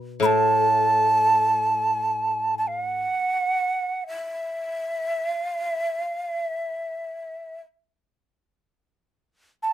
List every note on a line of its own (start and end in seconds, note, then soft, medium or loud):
0.00 0.22 B2 medium
0.20 3.03 A2 soft
0.20 0.27 B5 medium
0.26 2.55 A5 medium
2.58 2.69 A5 medium
2.67 2.81 F5 medium
2.81 4.04 F#5 medium
4.07 5.31 E5 medium
5.31 5.65 F5 medium
5.65 6.02 E5 medium
6.02 6.36 F5 medium
6.36 7.59 E5 medium
9.63 9.73 A5 medium